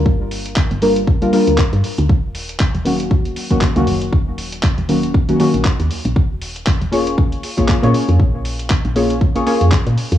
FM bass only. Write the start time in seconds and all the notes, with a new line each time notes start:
0.06 G1
0.71 G1
1.47 D2
1.73 G2
1.98 D2
2.09 D#1
2.75 D#1
3.76 C#2
3.87 F#1
4.13 D#1
4.78 D#1
5.54 A#1
5.80 D#2
6.05 A#1
6.16 D#1
6.81 D#1
7.58 A#1
7.83 A#2
8.08 F2
8.19 A#1
8.85 A#1
9.61 F2
9.86 A#2
10.12 F2